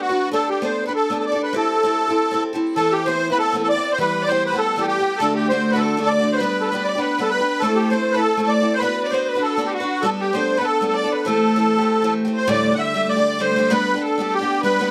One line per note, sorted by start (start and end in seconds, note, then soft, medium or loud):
0.01 0.29 F#4 medium
0.09 0.32 D4 soft
0.09 0.32 F#4 soft
0.09 0.31 B4 soft
0.31 0.61 B3 medium
0.31 0.62 D4 medium
0.31 0.64 G4 medium
0.31 0.50 A4 medium
0.31 0.64 A4 medium
0.49 0.63 G4 medium
0.62 0.86 B3 medium
0.62 0.86 D4 medium
0.62 0.87 G4 soft
0.62 0.84 A4 medium
0.62 0.85 C5 medium
0.85 1.09 D4 soft
0.85 1.11 G4 soft
0.85 1.09 A4 soft
0.85 0.93 B4 medium
0.95 1.18 A4 medium
1.10 1.32 B3 medium
1.10 1.32 D4 soft
1.10 1.33 G4 soft
1.10 1.31 A4 medium
1.19 1.25 A4 medium
1.26 1.42 D5 medium
1.32 1.54 D4 soft
1.32 1.54 G4 soft
1.32 1.54 A4 medium
1.43 1.55 B4 medium
1.53 1.83 C4 medium
1.53 1.84 E4 medium
1.53 1.84 G4 medium
1.53 1.86 A4 medium
1.57 2.43 A4 medium
1.83 2.08 C4 soft
1.83 2.08 E4 medium
1.83 2.08 G4 medium
1.83 2.06 A4 soft
2.08 2.30 C4 soft
2.08 2.31 E4 soft
2.08 2.32 G4 soft
2.08 2.32 A4 soft
2.31 2.54 C4 medium
2.31 2.54 E4 medium
2.31 2.53 G4 medium
2.31 2.52 A4 medium
2.53 2.76 C4 soft
2.53 2.77 E4 medium
2.53 2.76 G4 soft
2.53 2.76 A4 soft
2.75 3.06 E3 medium
2.75 3.07 B3 medium
2.75 3.07 C4 medium
2.75 2.94 A4 medium
2.75 2.93 A4 medium
2.80 3.09 E4 medium
2.92 3.07 G4 medium
2.92 3.09 G4 medium
3.06 3.30 E3 medium
3.06 3.31 B3 medium
3.06 3.30 C4 medium
3.06 3.28 C5 medium
3.06 3.34 C5 medium
3.10 3.29 E4 medium
3.30 3.53 B3 soft
3.30 3.54 C4 soft
3.30 3.54 E4 medium
3.30 3.38 B4 medium
3.30 3.40 B4 medium
3.38 3.61 A4 medium
3.52 3.75 E3 soft
3.52 3.76 B3 medium
3.52 3.76 C4 medium
3.52 3.74 E4 soft
3.63 3.68 A4 medium
3.69 3.93 D5 medium
3.69 3.90 D5 medium
3.75 3.99 C4 soft
3.75 3.97 E4 soft
3.79 3.99 B3 soft
3.92 3.98 C5 medium
3.92 3.99 C5 medium
3.98 4.26 E3 medium
3.98 4.28 G3 medium
3.98 4.30 B3 medium
3.98 4.30 G4 medium
3.98 4.24 B4 medium
3.98 4.23 B4 medium
4.22 4.31 D5 medium
4.22 4.29 D5 medium
4.27 4.51 E3 soft
4.27 4.52 G3 medium
4.27 4.53 B3 medium
4.27 4.43 C5 medium
4.27 4.61 C5 medium
4.31 4.51 G4 medium
4.45 4.59 B4 medium
4.52 4.76 G3 soft
4.52 4.77 B3 soft
4.52 4.76 G4 soft
4.58 4.83 A4 medium
4.58 4.84 A4 medium
4.76 4.98 E3 soft
4.76 4.98 G3 medium
4.76 4.99 B3 medium
4.76 4.97 G4 medium
4.80 4.86 G4 medium
4.80 4.88 G4 medium
4.88 5.20 G4 loud
4.88 5.20 G4 medium
4.99 5.21 G3 soft
4.99 5.21 B3 soft
4.99 5.20 G4 soft
5.17 5.50 D3 medium
5.17 5.50 A3 medium
5.17 5.34 A4 medium
5.17 5.36 A4 medium
5.22 5.52 D4 medium
5.22 5.52 F#4 medium
5.35 5.48 G4 medium
5.35 5.52 G4 medium
5.49 5.73 D3 medium
5.49 5.74 A3 medium
5.49 5.74 D4 medium
5.49 5.71 C5 medium
5.49 5.75 C5 medium
5.53 5.72 F#4 medium
5.71 5.97 F#4 soft
5.71 5.79 B4 medium
5.71 5.83 B4 medium
5.75 5.96 D3 soft
5.75 5.97 A3 soft
5.75 5.97 D4 soft
5.75 5.99 A4 medium
5.81 6.03 A4 medium
5.97 6.19 D3 soft
5.97 6.20 A3 medium
5.97 6.20 D4 medium
5.97 6.18 F#4 soft
5.97 6.09 A4 medium
6.04 6.13 A4 medium
6.04 6.30 D5 loud
6.11 6.35 D5 medium
6.19 6.40 D3 soft
6.19 6.40 A3 soft
6.19 6.41 D4 soft
6.19 6.41 F#4 medium
6.32 6.40 C5 medium
6.32 6.43 C5 medium
6.37 6.71 G3 medium
6.37 6.63 B4 medium
6.41 6.71 B3 medium
6.41 6.72 D4 medium
6.41 6.72 G4 medium
6.41 6.71 B4 medium
6.61 6.70 A4 medium
6.68 6.95 G3 soft
6.68 6.87 B4 medium
6.72 6.95 B3 medium
6.72 6.96 D4 medium
6.72 6.94 G4 medium
6.72 6.91 B4 medium
6.84 7.00 D5 medium
6.89 7.03 D5 medium
6.95 7.18 B3 soft
6.95 7.19 D4 soft
6.95 7.18 G4 soft
6.95 7.24 B4 medium
7.02 7.32 B4 medium
7.18 7.40 G3 soft
7.18 7.41 B3 soft
7.18 7.40 D4 medium
7.18 7.39 G4 soft
7.18 7.30 A4 medium
7.30 7.62 B4 loud
7.30 7.64 B4 medium
7.40 7.63 B3 soft
7.40 7.63 D4 soft
7.40 7.62 G4 soft
7.60 7.89 A3 medium
7.60 7.90 C4 medium
7.60 7.78 A4 loud
7.60 7.95 A4 medium
7.64 7.92 E4 medium
7.64 7.92 A4 medium
7.75 7.89 G4 medium
7.90 8.15 A3 soft
7.90 8.15 C4 soft
7.90 8.15 E4 medium
7.90 8.13 A4 medium
7.90 8.15 C5 medium
7.90 8.18 C5 medium
8.12 8.38 A4 soft
8.12 8.20 B4 medium
8.16 8.38 C4 soft
8.16 8.38 E4 soft
8.16 8.40 A4 medium
8.16 8.23 B4 medium
8.23 8.45 A4 medium
8.37 8.60 A3 medium
8.37 8.61 C4 soft
8.37 8.60 E4 medium
8.37 8.59 A4 medium
8.42 8.51 A4 medium
8.46 8.54 A4 medium
8.46 8.75 D5 medium
8.53 8.76 D5 medium
8.60 8.82 C4 soft
8.60 8.83 E4 soft
8.60 8.83 A4 soft
8.74 8.81 C5 medium
8.79 9.11 B3 medium
8.79 9.12 D4 medium
8.79 9.03 B4 medium
8.79 9.08 B4 medium
8.84 9.13 F#4 medium
8.84 9.14 B4 medium
9.03 9.11 D5 medium
9.03 9.15 D5 medium
9.10 9.36 B3 soft
9.10 9.36 D4 medium
9.10 9.35 F#4 medium
9.10 9.34 B4 medium
9.10 9.27 C5 medium
9.10 9.30 C5 medium
9.28 9.43 B4 medium
9.28 9.47 B4 medium
9.35 9.57 D4 soft
9.35 9.58 F#4 soft
9.35 9.59 B4 soft
9.42 9.67 A4 medium
9.42 9.69 A4 medium
9.57 9.81 B3 soft
9.57 9.82 D4 medium
9.57 9.81 F#4 medium
9.57 9.79 B4 medium
9.65 9.73 G4 medium
9.65 9.72 G4 medium
9.73 10.02 F#4 medium
9.73 10.05 F#4 medium
9.80 10.04 D4 soft
9.80 10.04 F#4 soft
9.80 10.03 B4 soft
10.02 10.33 G3 medium
10.02 10.33 B3 medium
10.02 10.34 D4 medium
10.02 10.10 A4 medium
10.02 10.23 A4 medium
10.06 10.36 A4 medium
10.20 10.35 G4 medium
10.20 10.36 G4 medium
10.33 10.58 G3 soft
10.33 10.58 B3 medium
10.33 10.58 D4 medium
10.33 10.56 A4 medium
10.33 10.59 C5 medium
10.57 10.81 B3 soft
10.57 10.81 D4 soft
10.57 10.82 A4 medium
10.57 10.66 B4 medium
10.57 10.65 B4 medium
10.64 10.86 A4 medium
10.81 11.04 G3 soft
10.81 11.04 B3 medium
10.81 11.04 D4 medium
10.81 11.03 A4 medium
10.87 10.95 A4 medium
10.87 10.96 A4 medium
10.94 11.13 D5 medium
11.04 11.25 B3 soft
11.04 11.27 D4 soft
11.04 11.26 A4 medium
11.12 11.25 B4 medium
11.12 11.27 B4 medium
11.25 11.55 E3 medium
11.25 11.59 A3 medium
11.25 11.56 C4 medium
11.25 11.58 G4 medium
11.25 12.14 A4 medium
11.56 11.80 E3 medium
11.56 11.80 A3 medium
11.56 11.81 C4 soft
11.56 11.77 G4 medium
11.78 12.03 A3 soft
11.78 12.03 C4 soft
11.78 12.03 G4 medium
12.02 12.25 E3 medium
12.02 12.25 A3 medium
12.02 12.26 C4 medium
12.02 12.24 G4 medium
12.25 12.48 A3 soft
12.25 12.48 C4 soft
12.25 12.48 G4 medium
12.33 12.49 C5 medium
12.47 12.72 D2 medium
12.47 12.72 A2 medium
12.47 12.72 D3 medium
12.47 12.72 G3 medium
12.47 12.71 A3 medium
12.47 12.70 G4 medium
12.47 12.72 D5 medium
12.47 12.74 D5 medium
12.71 12.93 D3 soft
12.71 12.94 G3 soft
12.71 12.95 A3 soft
12.71 12.95 G4 soft
12.71 12.80 F#5 medium
12.79 13.07 E5 medium
12.79 13.11 E5 medium
12.94 13.17 D3 medium
12.94 13.17 G3 medium
12.94 13.16 A3 medium
12.94 13.15 G4 medium
13.09 13.42 D5 medium
13.09 13.41 D5 medium
13.16 13.38 D3 soft
13.16 13.39 G3 soft
13.16 13.40 A3 soft
13.16 13.39 G4 soft
13.39 13.55 D3 medium
13.39 13.56 G3 medium
13.39 13.57 A3 medium
13.39 13.58 G4 medium
13.39 13.69 C5 medium
13.39 13.72 C5 medium
13.56 13.70 D3 soft
13.56 13.69 G3 soft
13.56 13.71 A3 medium
13.56 13.72 G4 medium
13.70 13.94 G3 medium
13.70 13.95 B3 medium
13.70 13.94 D4 medium
13.70 13.93 G4 medium
13.70 14.03 B4 medium
13.70 14.03 B4 loud
13.94 14.18 B3 soft
13.94 14.19 D4 soft
13.94 14.18 G4 soft
14.01 14.34 A4 medium
14.18 14.40 G3 soft
14.18 14.41 B3 soft
14.18 14.40 D4 medium
14.18 14.38 G4 medium
14.32 14.62 G4 medium
14.32 14.61 G4 medium
14.39 14.63 B3 soft
14.39 14.63 D4 soft
14.39 14.62 G4 soft
14.61 14.78 G3 medium
14.61 14.79 B3 medium
14.61 14.89 B4 medium
14.61 14.91 B4 loud
14.65 14.80 D4 medium
14.65 14.81 G4 medium
14.79 14.91 G3 medium
14.79 14.91 B3 medium
14.79 14.91 D4 medium
14.79 14.91 G4 medium